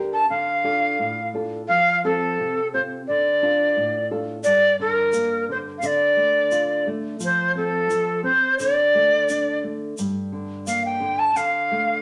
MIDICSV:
0, 0, Header, 1, 4, 480
1, 0, Start_track
1, 0, Key_signature, -1, "minor"
1, 0, Tempo, 692042
1, 197, Time_signature, 2, 2, 24, 8
1, 8336, End_track
2, 0, Start_track
2, 0, Title_t, "Quena"
2, 0, Program_c, 0, 77
2, 93, Note_on_c, 0, 81, 85
2, 197, Note_off_c, 0, 81, 0
2, 208, Note_on_c, 0, 77, 82
2, 895, Note_off_c, 0, 77, 0
2, 1166, Note_on_c, 0, 77, 91
2, 1385, Note_off_c, 0, 77, 0
2, 1418, Note_on_c, 0, 69, 75
2, 1860, Note_off_c, 0, 69, 0
2, 1899, Note_on_c, 0, 72, 76
2, 1950, Note_off_c, 0, 72, 0
2, 2134, Note_on_c, 0, 74, 79
2, 2817, Note_off_c, 0, 74, 0
2, 3079, Note_on_c, 0, 74, 91
2, 3301, Note_off_c, 0, 74, 0
2, 3337, Note_on_c, 0, 70, 84
2, 3779, Note_off_c, 0, 70, 0
2, 3824, Note_on_c, 0, 72, 79
2, 3866, Note_off_c, 0, 72, 0
2, 4011, Note_on_c, 0, 77, 61
2, 4065, Note_on_c, 0, 74, 94
2, 4075, Note_off_c, 0, 77, 0
2, 4770, Note_off_c, 0, 74, 0
2, 5026, Note_on_c, 0, 72, 78
2, 5235, Note_off_c, 0, 72, 0
2, 5248, Note_on_c, 0, 69, 81
2, 5694, Note_off_c, 0, 69, 0
2, 5715, Note_on_c, 0, 72, 85
2, 5939, Note_off_c, 0, 72, 0
2, 5954, Note_on_c, 0, 74, 85
2, 6648, Note_off_c, 0, 74, 0
2, 7402, Note_on_c, 0, 77, 75
2, 7512, Note_off_c, 0, 77, 0
2, 7529, Note_on_c, 0, 79, 78
2, 7762, Note_on_c, 0, 81, 79
2, 7772, Note_off_c, 0, 79, 0
2, 7882, Note_on_c, 0, 77, 76
2, 7892, Note_off_c, 0, 81, 0
2, 8336, Note_off_c, 0, 77, 0
2, 8336, End_track
3, 0, Start_track
3, 0, Title_t, "Nylon-string guitar"
3, 0, Program_c, 1, 24
3, 0, Note_on_c, 1, 50, 49
3, 0, Note_on_c, 1, 62, 42
3, 0, Note_on_c, 1, 67, 37
3, 0, Note_on_c, 1, 70, 51
3, 151, Note_off_c, 1, 67, 0
3, 152, Note_off_c, 1, 62, 0
3, 154, Note_off_c, 1, 70, 0
3, 186, Note_off_c, 1, 50, 0
3, 209, Note_on_c, 1, 50, 54
3, 443, Note_on_c, 1, 62, 42
3, 447, Note_on_c, 1, 69, 51
3, 448, Note_on_c, 1, 65, 40
3, 669, Note_off_c, 1, 50, 0
3, 686, Note_on_c, 1, 45, 51
3, 825, Note_off_c, 1, 62, 0
3, 826, Note_off_c, 1, 65, 0
3, 827, Note_off_c, 1, 69, 0
3, 926, Note_on_c, 1, 62, 41
3, 930, Note_on_c, 1, 65, 41
3, 936, Note_on_c, 1, 69, 50
3, 1115, Note_off_c, 1, 62, 0
3, 1116, Note_off_c, 1, 65, 0
3, 1120, Note_off_c, 1, 69, 0
3, 1147, Note_off_c, 1, 45, 0
3, 1172, Note_on_c, 1, 53, 63
3, 1417, Note_on_c, 1, 60, 45
3, 1421, Note_on_c, 1, 69, 46
3, 1425, Note_on_c, 1, 65, 38
3, 1630, Note_off_c, 1, 53, 0
3, 1662, Note_on_c, 1, 48, 50
3, 1793, Note_off_c, 1, 60, 0
3, 1795, Note_off_c, 1, 69, 0
3, 1797, Note_off_c, 1, 65, 0
3, 1899, Note_on_c, 1, 60, 45
3, 1904, Note_on_c, 1, 65, 38
3, 1905, Note_on_c, 1, 69, 42
3, 2083, Note_off_c, 1, 60, 0
3, 2084, Note_off_c, 1, 69, 0
3, 2085, Note_off_c, 1, 65, 0
3, 2115, Note_off_c, 1, 48, 0
3, 2146, Note_on_c, 1, 50, 55
3, 2375, Note_on_c, 1, 62, 43
3, 2379, Note_on_c, 1, 69, 44
3, 2380, Note_on_c, 1, 65, 42
3, 2597, Note_off_c, 1, 50, 0
3, 2611, Note_on_c, 1, 45, 54
3, 2752, Note_off_c, 1, 62, 0
3, 2753, Note_off_c, 1, 69, 0
3, 2755, Note_off_c, 1, 65, 0
3, 2849, Note_on_c, 1, 62, 43
3, 2850, Note_on_c, 1, 65, 40
3, 2853, Note_on_c, 1, 69, 43
3, 3036, Note_off_c, 1, 65, 0
3, 3037, Note_off_c, 1, 62, 0
3, 3037, Note_off_c, 1, 69, 0
3, 3070, Note_off_c, 1, 45, 0
3, 3091, Note_on_c, 1, 43, 57
3, 3326, Note_on_c, 1, 50, 47
3, 3554, Note_off_c, 1, 50, 0
3, 3558, Note_on_c, 1, 58, 49
3, 3790, Note_off_c, 1, 58, 0
3, 3807, Note_on_c, 1, 50, 50
3, 4016, Note_off_c, 1, 43, 0
3, 4035, Note_off_c, 1, 50, 0
3, 4042, Note_on_c, 1, 50, 62
3, 4276, Note_on_c, 1, 57, 50
3, 4509, Note_off_c, 1, 57, 0
3, 4519, Note_on_c, 1, 65, 50
3, 4750, Note_off_c, 1, 65, 0
3, 4764, Note_on_c, 1, 57, 51
3, 4971, Note_off_c, 1, 50, 0
3, 4993, Note_off_c, 1, 57, 0
3, 4994, Note_on_c, 1, 53, 59
3, 5237, Note_on_c, 1, 60, 45
3, 5469, Note_off_c, 1, 60, 0
3, 5472, Note_off_c, 1, 53, 0
3, 5480, Note_on_c, 1, 53, 48
3, 5708, Note_on_c, 1, 60, 49
3, 5711, Note_off_c, 1, 53, 0
3, 5945, Note_off_c, 1, 60, 0
3, 5961, Note_on_c, 1, 50, 62
3, 6206, Note_on_c, 1, 57, 50
3, 6434, Note_off_c, 1, 57, 0
3, 6448, Note_on_c, 1, 62, 47
3, 6675, Note_off_c, 1, 62, 0
3, 6683, Note_on_c, 1, 57, 46
3, 6892, Note_off_c, 1, 50, 0
3, 6913, Note_off_c, 1, 57, 0
3, 6926, Note_on_c, 1, 43, 55
3, 7159, Note_on_c, 1, 50, 48
3, 7392, Note_off_c, 1, 50, 0
3, 7402, Note_on_c, 1, 58, 42
3, 7631, Note_on_c, 1, 50, 52
3, 7633, Note_off_c, 1, 58, 0
3, 7855, Note_off_c, 1, 43, 0
3, 7868, Note_off_c, 1, 50, 0
3, 7879, Note_on_c, 1, 50, 60
3, 8125, Note_on_c, 1, 57, 46
3, 8336, Note_off_c, 1, 50, 0
3, 8336, Note_off_c, 1, 57, 0
3, 8336, End_track
4, 0, Start_track
4, 0, Title_t, "Drums"
4, 3079, Note_on_c, 9, 82, 92
4, 3148, Note_off_c, 9, 82, 0
4, 3557, Note_on_c, 9, 82, 86
4, 3626, Note_off_c, 9, 82, 0
4, 4040, Note_on_c, 9, 82, 81
4, 4109, Note_off_c, 9, 82, 0
4, 4518, Note_on_c, 9, 82, 73
4, 4587, Note_off_c, 9, 82, 0
4, 4995, Note_on_c, 9, 82, 80
4, 5064, Note_off_c, 9, 82, 0
4, 5481, Note_on_c, 9, 82, 85
4, 5551, Note_off_c, 9, 82, 0
4, 5961, Note_on_c, 9, 82, 84
4, 6030, Note_off_c, 9, 82, 0
4, 6442, Note_on_c, 9, 82, 91
4, 6511, Note_off_c, 9, 82, 0
4, 6920, Note_on_c, 9, 82, 81
4, 6989, Note_off_c, 9, 82, 0
4, 7402, Note_on_c, 9, 82, 95
4, 7471, Note_off_c, 9, 82, 0
4, 7880, Note_on_c, 9, 82, 90
4, 7949, Note_off_c, 9, 82, 0
4, 8336, End_track
0, 0, End_of_file